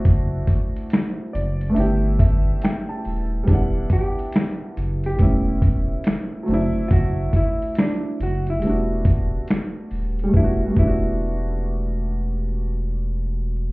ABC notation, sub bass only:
X:1
M:4/4
L:1/16
Q:"Swing 16ths" 1/4=70
K:Em
V:1 name="Sub bass" clef=bass
F,,,2 z4 F,,,2 G,,,4 z2 ^D,,,2 | E,,,2 z4 F,,,2 E,,,4 z2 F,,, z | F,,,2 z4 F,,,2 E,,,4 z2 ^D,,,2 | E,,,2 E,,,12- E,,,2 |]